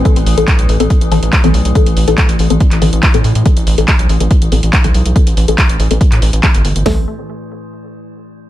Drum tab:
HH |xxoxxxoxxxoxxxox|xxoxxxoxxxoxxxox|xxoxxxoxxxoxxxox|xxoxxxoxxxoxxxox|
CP |----x-------x---|----x----x--x---|----x-------x---|----x----x--x---|
SD |----------------|----------------|----------------|----------------|
FT |----------------|----------------|----------------|----------------|
BD |o---o---o---o---|o---o---o---o---|o---o---o---o---|o---o---o---o---|

HH |o---------------|
CP |----------------|
SD |o---------------|
FT |o---------------|
BD |----------------|